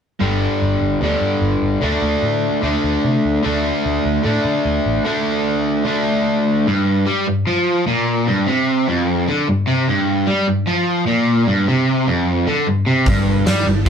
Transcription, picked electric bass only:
0.21 G1
0.62 G1
0.81 G1
1.02 D2
1.21 G2
1.41 G1
1.62 G1
1.83 D2
2.02 D2
2.23 A2
2.63 D2
2.84 D2
3.05 C3
3.25 D2
3.46 D2
3.86 D2
4.05 D2
4.25 A2
4.45 D3
4.65 D2
4.86 A1
13.06 G1
13.47 G2
13.67 G1

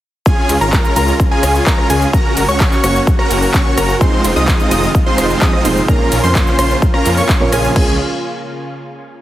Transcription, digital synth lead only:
0.26 G#5
0.61 A#5
0.96 A#5
1.31 G#5
1.67 A#5
1.90 G#5
2.13 A#5
2.48 C#6
2.84 C#6
3.19 A#5
3.54 C#6
3.78 A#5
4.01 C6
4.36 D#6
4.71 D#6
5.06 C6
5.42 D#6
5.65 C6
5.88 A#5
6.24 C6
6.59 C6
6.94 A#5
7.17 C#6
7.52 G#5
7.76 G#5

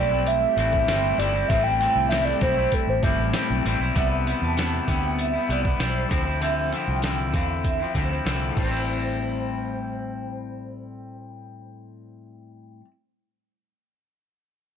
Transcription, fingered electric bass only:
Already playing: B1
0.57 A1
0.87 G1
1.18 G1
1.50 A1
1.95 C2
2.41 B1
2.87 A1
3.02 G1
3.18 A1
3.50 B1
3.65 A1
3.80 B1
3.96 C2
4.42 E2
4.88 D2
5.49 C2
5.80 B1
6.11 D2
6.88 C2
7.33 E2
7.95 D2
8.26 C2
8.57 A1

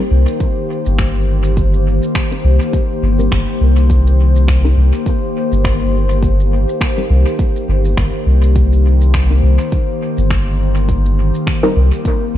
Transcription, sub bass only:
0.11 C2
0.86 G1
2.44 C2
3.02 G1
3.32 G1
3.61 C2
4.77 C2
5.52 G1
7.10 C2
7.68 G1
7.97 G1
8.26 C2
9.43 C2
10.18 G1
11.76 C2
12.34 G1

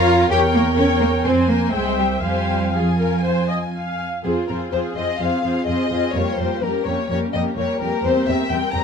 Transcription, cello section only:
Already playing: F4
0.30 G4
0.54 A#3
0.77 C#4
1.00 A#3
1.24 C4
1.49 A#3
1.74 G#3
1.98 G3
2.23 G3
2.75 F3
4.25 F4
4.73 G#4
5.20 G#4
6.14 F4
6.62 C#4
7.57 A#3
8.51 C4

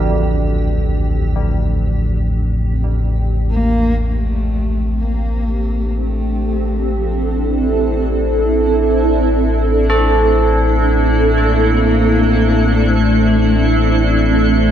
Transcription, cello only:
3.51 A#3
4.01 A3
5.00 A#3
5.99 A3
6.98 F3
7.49 E3
11.40 A#3
12.89 A3
13.88 A3

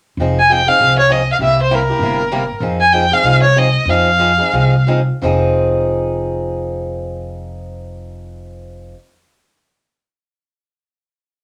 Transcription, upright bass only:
0.17 F1
0.80 C2
1.39 C2
1.99 G1
2.60 F2
3.22 C2
3.85 F2
4.53 C2
5.22 F1

